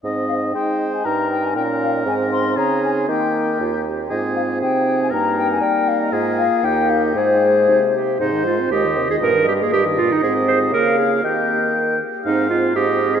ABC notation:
X:1
M:2/4
L:1/16
Q:1/4=118
K:Ab
V:1 name="Flute"
e2 f2 g3 a | b2 g a g2 f e | a2 c'2 b2 a2 | g4 z4 |
e2 f2 g3 a | b2 g a g2 f e | e2 f2 g2 f e | c6 z2 |
e8- | e8 | e4 f4 | e6 z2 |
e2 e2 e2 e2 |]
V:2 name="Oboe"
e4 c4 | B4 B4- | B4 A4 | G6 z2 |
A4 A4 | B4 B4 | A4 G4 | A6 z2 |
c4 e4- | e4 e4- | e4 f4 | g6 z2 |
f4 e4 |]
V:3 name="Clarinet"
E8 | E8- | E8 | E4 F2 G2 |
F4 E4 | E8 | F4 E4 | E4 E2 G2 |
E2 F2 G3 A | B2 G A G2 F E | A2 c2 B2 A2 | G4 z4 |
E2 F2 G3 A |]
V:4 name="French horn"
C4 E4- | E4 D4 | C8 | B,6 z2 |
C8 | B,8- | B,8 | A,6 z2 |
C, E, A, C A, E, C, E, | B,, E, G, B, G, E, B,, E, | C4 B,4 | B,6 z2 |
C2 C2 C2 C2 |]
V:5 name="Bassoon" clef=bass
A,,4 A,4 | G,,4 B,,4 | A,,4 D,4 | E,4 E,,4 |
A,,4 C,4 | G,,4 G,4 | A,,2 z2 E,,4 | A,,4 C,4 |
A,,4 E,,4 | G,,4 G,,4 | A,,4 D,4 | E,6 z2 |
A,,4 A,,4 |]